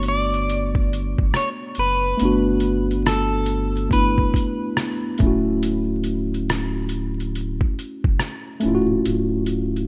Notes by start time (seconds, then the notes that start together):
Already playing: G1 A3 B3 D4 F#4
0.03 closed hi-hat
0.08 D5
0.34 closed hi-hat
0.50 closed hi-hat
0.75 kick
0.93 closed hi-hat
1.18 G1, kick
1.34 C#5, cross-stick, closed hi-hat
1.75 F#1, closed hi-hat
1.79 B4
2.17 G1 A3 B3, closed hi-hat
2.23 D4 F#4
2.60 closed hi-hat
2.91 closed hi-hat
3.06 A4, cross-stick, closed hi-hat
3.46 closed hi-hat
3.77 closed hi-hat
3.89 G1 A3 B3 D4 B4, kick, closed hi-hat
3.93 E4
4.18 kick
4.34 kick, closed hi-hat
4.77 cross-stick, closed hi-hat
5.18 D1 A3 C#4, kick, closed hi-hat
5.24 E4 F#4
5.63 closed hi-hat
6.04 closed hi-hat
6.34 closed hi-hat
6.49 cross-stick, closed hi-hat
6.89 closed hi-hat
7.20 closed hi-hat
7.35 closed hi-hat
7.61 kick
7.79 closed hi-hat
8.04 F#1, kick
8.19 cross-stick, closed hi-hat
8.60 A3 C#4, closed hi-hat
8.64 C#1 E4
8.68 F4
8.74 F#4
9.05 D1, closed hi-hat
9.46 closed hi-hat
9.76 closed hi-hat